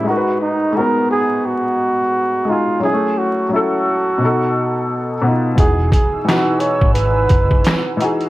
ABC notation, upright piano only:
X:1
M:4/4
L:1/16
Q:"Swing 16ths" 1/4=87
K:Abdor
V:1 name="Upright piano"
[A,EGBc]4 [A,CEG]6- [A,CEG] z3 [A,EGA]2 | [G,=A,D_F_A]4 [G,DF=A]4 [=B,,=B,^DA]6 [B,,B,D=F]2 | [=E,^D^F^G]4 [E,DF=B]6- [E,DFB] z3 [E,DFG]2 |]